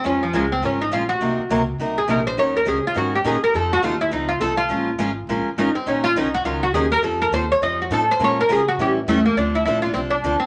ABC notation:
X:1
M:4/4
L:1/8
Q:"Swing" 1/4=206
K:Bbm
V:1 name="Oud"
D F, A, C D E F G- | G4 z A B c | d B A F G =G A B | =A G F =E _E F A F- |
F4 z2 E C | D F E G F G A B | =A B c d e G A c | d B A G =G z =A, B, |
[K:Dm] D E E F C D2 C |]
V:2 name="Steel-string acoustic guitar"
[F,A,DFB] z [F,A,DFB] z [F,A,DFB] z [F,A,DFB] z | [C,G,B,EB] z [C,G,B,EB] z [C,G,B,EB] z [C,G,B,EB] z | [E,G,DEB] z [E,G,DEB] z [E,G,DEB] z [E,G,DEB] z | [F,CE=A] z [F,CEA] z [F,CEA] z [F,CEA] z |
[F,A,DFB] z [F,A,DFB] z [F,A,DFB] z [F,A,DFB] z | [E,G,DEB] z [E,G,DEB] z [E,G,DEB] z [E,G,DEB] z | [F,CE=A] z [F,CEA] z [F,CEA] z [F,CEA] z | [F,A,DFB] z [F,A,DFB] z [=E,=G,^C=E=A] z [E,G,CEA] z |
[K:Dm] [D,F,CDA] z [D,F,CDA] [CDA] [D,F,CDA] z [D,F,CDA] z |]
V:3 name="Upright bass" clef=bass
F,,2 D,,2 A,,,2 B,,,2 | C,, z D,,2 C,,2 B,,,2 | E,,2 D,, z A,,2 B,, z | F,,2 E,,2 D,,2 C,,2 |
B,,,2 A,,,2 B,,, z A,,, z | B,,,2 C,,2 D,,2 E,,2 | F,,2 E,,2 F,,2 =A,,2 | B,,2 D,2 =A,,2 =E,,2 |
[K:Dm] D,,2 B,,,2 C,,2 D,, z |]